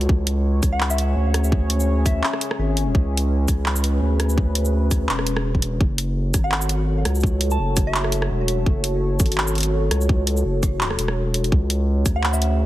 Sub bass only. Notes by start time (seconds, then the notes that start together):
0.09 C#2
0.63 C#2
1.16 D2
2.59 G#1
2.95 C#2
3.48 C#2
4.02 D2
5.09 E1
5.80 F#1
6.34 G#1
7.05 C#2
7.59 F#1
8.30 E1
8.66 F#1
9.20 G#1
9.91 C#2
10.45 F#1
10.98 E1
11.52 C#2
12.05 D2